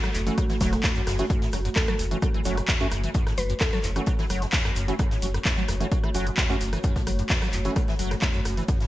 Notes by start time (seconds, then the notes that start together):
Already playing: A3 F#4 A4
0.04 F#3, cross-stick, closed hi-hat, shaker
0.14 F#1 E2, clap, closed hi-hat, open hi-hat, shaker
0.27 E3 A3 C#4 F#4, closed hi-hat, shaker
0.38 F#3, kick, cross-stick, closed hi-hat, shaker
0.49 E3, snare, closed hi-hat, shaker
0.60 E1 F#3, kick, snare, closed hi-hat, open hi-hat, shaker
0.72 E2, cross-stick, snare, closed hi-hat, shaker
0.83 E2, kick, snare, clap, closed hi-hat, shaker
0.95 F#2, closed hi-hat, shaker
1.07 F#1 F#2, cross-stick, snare, open hi-hat, shaker
1.18 E3 A3 C#4 F#4, closed hi-hat, shaker
1.30 F#2 C#5, kick, closed hi-hat, shaker
1.41 A2, snare, closed hi-hat, shaker
1.52 F#1 F#3, cross-stick, closed hi-hat, open hi-hat, shaker
1.65 F#2, closed hi-hat, shaker
1.76 E2 A4, kick, snare, clap, closed hi-hat, shaker
1.88 F#3 A4, cross-stick, closed hi-hat, shaker
1.99 F#1 E2, closed hi-hat, open hi-hat, shaker
2.11 E3 A3 C#4 F#4, closed hi-hat, shaker
2.22 F#3, kick, cross-stick, closed hi-hat, shaker
2.34 E3, closed hi-hat
2.45 F#1 F#3 A3 C#4 F#4, snare, closed hi-hat, open hi-hat, shaker
2.57 E2, cross-stick, closed hi-hat, shaker
2.68 E2, kick, snare, clap, closed hi-hat, shaker
2.80 F#2 A3 C#4 F#4, closed hi-hat, shaker
2.91 F#1 F#2, cross-stick, closed hi-hat, open hi-hat, shaker
3.04 E3, closed hi-hat, shaker
3.14 F#2, kick, closed hi-hat, shaker
3.27 A2, cross-stick, snare, closed hi-hat, shaker
3.37 F#1 F#3 B4, closed hi-hat, open hi-hat, shaker
3.49 F#2, closed hi-hat, shaker
3.60 E2 A4, kick, cross-stick, snare, clap, closed hi-hat, open hi-hat, shaker
3.73 F#3 A4, closed hi-hat, shaker
3.83 F#1 E2, clap, closed hi-hat, open hi-hat, shaker
3.95 E3 A3 C#4 F#4, cross-stick, closed hi-hat, shaker
4.06 F#3, kick, closed hi-hat, shaker
4.18 E3, snare, closed hi-hat
4.30 F#1 F#3, cross-stick, closed hi-hat, open hi-hat, shaker
4.42 E2, snare, closed hi-hat, shaker
4.52 E2, kick, snare, clap, closed hi-hat, shaker
4.65 F#2, cross-stick, closed hi-hat, shaker
4.76 F#1 F#2, closed hi-hat, open hi-hat, shaker
4.88 E3 A3 C#4 F#4, closed hi-hat, shaker
4.99 F#2, kick, cross-stick, closed hi-hat, shaker
5.11 A2, snare, closed hi-hat, shaker
5.22 F#1 F#3, closed hi-hat, open hi-hat, shaker
5.34 F#2, cross-stick, closed hi-hat, shaker
5.45 E2, kick, snare, clap, closed hi-hat, shaker
5.57 F#3, closed hi-hat, shaker
5.68 F#1 E2, cross-stick, closed hi-hat, open hi-hat, shaker
5.80 E3 A3 C#4 F#4, closed hi-hat, shaker
5.91 F#3, kick, closed hi-hat, shaker
6.04 E3, cross-stick, closed hi-hat
6.14 F#1 F#3 A3 C#4 F#4, snare, closed hi-hat, open hi-hat, shaker
6.27 E2, closed hi-hat, shaker
6.37 E2, kick, cross-stick, snare, clap, closed hi-hat, shaker
6.50 F#2 A3 C#4 F#4, closed hi-hat, shaker
6.61 F#1 F#2, closed hi-hat, open hi-hat, shaker
6.73 E3, cross-stick, closed hi-hat, shaker
6.83 F#2, kick, closed hi-hat, shaker
6.96 A2, kick, snare, closed hi-hat, shaker
7.07 F#1 F#3, cross-stick, closed hi-hat, open hi-hat, shaker
7.19 F#2, closed hi-hat, shaker
7.29 E2, kick, snare, clap, closed hi-hat, open hi-hat, shaker
7.42 F#3, cross-stick, closed hi-hat, shaker
7.53 F#1 E2, clap, closed hi-hat, open hi-hat, shaker
7.65 E3 A3 C#4 F#4, closed hi-hat, shaker
7.76 F#3, kick, cross-stick, closed hi-hat, shaker
7.88 E3, snare, closed hi-hat
7.99 F#1 F#3, closed hi-hat, open hi-hat, shaker
8.11 E2, cross-stick, snare, closed hi-hat, shaker
8.22 E2, kick, snare, clap, closed hi-hat, shaker
8.34 F#2, closed hi-hat, shaker
8.45 F#1 F#2, cross-stick, closed hi-hat, open hi-hat, shaker
8.57 E3, closed hi-hat, shaker
8.68 F#2 A4, kick, closed hi-hat, shaker
8.80 A2, snare, closed hi-hat, shaker